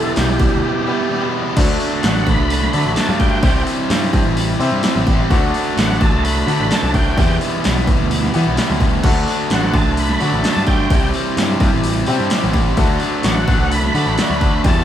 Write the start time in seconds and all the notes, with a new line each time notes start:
Already playing: E2 B2 E3 G3 B3 E4 G4 A4 B4
0.15 B1 E3 G3 B3 E4 G4, snare, open hi-hat
0.39 B1 G3 B3 E4, kick, open hi-hat
0.52 D2
0.86 E2 B2 E3 G3 B3 E4 G4 B4
1.09 E2 B2 E3 G3 G4
1.13 B3 E4
1.56 D2 D3 F#3 A3 D4 F#4 A4 D5, kick, open hi-hat, crash
1.80 F#3 A3 D4, open hi-hat
2.02 A1 D3 F#3 A3 D4 F#5, snare, open hi-hat
2.26 A1 F#3 A3 D4 B5, kick, open hi-hat
2.38 C2
2.50 open hi-hat
2.63 snare
2.72 D3 A3 D4 F#4 A4 D5, open hi-hat
2.76 F#3
2.85 A1
2.94 D3 F#3 A3 D4 F#4 A5, snare, open hi-hat
3.09 G2
3.20 G5, kick, open hi-hat
3.42 C2 C3 E3 G3 C4 E4 G4 C5 E5, kick, open hi-hat
3.67 G3 C4 E4, open hi-hat
3.89 G2 C3 G3 C4 E4, snare, open hi-hat
4.12 G2 G3 C4 E4, kick, open hi-hat
4.25 A1
4.37 open hi-hat
4.60 C3 E3 G3 C4 E4 G4 C5 E5, open hi-hat
4.72 G2
4.83 C3 E3 G3 C4 E4 G4, snare, open hi-hat
4.96 A1
5.07 kick, open hi-hat
5.30 D2 D3 F#3 A3 D4 F#4 A4 D5 F#5, kick, open hi-hat
5.54 F#3 A3 D4, open hi-hat
5.76 A1 D3 F#3 A3 D4 F#5, snare, open hi-hat
5.99 A1 F#3 A3 D4 A5, kick, open hi-hat
6.12 C2
6.24 B5, open hi-hat
6.46 D3 A3 D4 F#4 A4 D5 F#5, open hi-hat
6.51 F#3
6.60 A1
6.71 D3 F#3 A3 D4 F#4 A5, snare, open hi-hat
6.83 C2
6.94 G5, kick, open hi-hat
7.17 E2 B2 E3 G3 B3 E4 G4 B4 E5 G5, kick, open hi-hat
7.41 G3 B3 E4, open hi-hat
7.64 B1 E3 G3 B3 E4, snare, open hi-hat
7.87 B1 G3 B3 E4, kick, open hi-hat
8.01 D2
8.11 open hi-hat
8.24 snare
8.34 E2 B2 E3 G3 B3 E4 G4 B4 E5 F#5, open hi-hat
8.47 B1
8.57 E2 B2 E3 G3 B3 E4 G4, snare, open hi-hat
8.70 D2
8.80 kick, open hi-hat
9.03 D2 D3 F#3 A3 D4 F#4 A4 D5 F#5, kick, crash
9.27 F#3 A3 D4, open hi-hat
9.50 A1 D3 F#3 A3 D4 F#5, snare, open hi-hat
9.73 A1 F#3 A3 D4 A5, kick, open hi-hat
9.86 C2
9.97 B5, open hi-hat
10.09 snare
10.19 D3 A3 D4 F#4 A4 D5 F#5, open hi-hat
10.23 F#3
10.32 A1
10.43 D3 F#3 A3 D4 F#4 A5, snare, open hi-hat
10.57 G2
10.67 G5, kick, open hi-hat
10.90 C2 C3 E3 G3 C4 E4 G4 C5 E5 G5, kick, open hi-hat
11.14 G3 C4 E4, open hi-hat
11.37 G2 C3 G3 C4 E4, snare, open hi-hat
11.60 G2 G3 C4 E4, kick, open hi-hat
11.73 A1
11.84 open hi-hat
12.06 C3 E3 G3 C4 E4 G4 C5 E5 G5, open hi-hat
12.20 G2
12.30 C3 E3 G3 C4 E4 G4, snare, open hi-hat
12.44 A1
12.53 kick, open hi-hat
12.77 D2 D3 F#3 A3 D4 F#4 A4 D5 F#5, kick, open hi-hat
13.00 A3 D4, open hi-hat
13.04 F#3
13.23 A1 D3 F#3 A3 D4, snare, open hi-hat
13.28 F#5
13.47 A1 F#3 A3 D4, kick, open hi-hat
13.59 C2
13.72 B5, open hi-hat
13.84 snare
13.94 D3 F#3 A3 D4 F#4 A4 D5 F#5, open hi-hat
14.06 A1
14.17 D3 F#3 A3 D4 F#4, snare, open hi-hat
14.30 D2
14.41 kick, open hi-hat
14.64 E2 B2 E3 G3 B3 E4 G4 B4 E5 G5 A5, kick, open hi-hat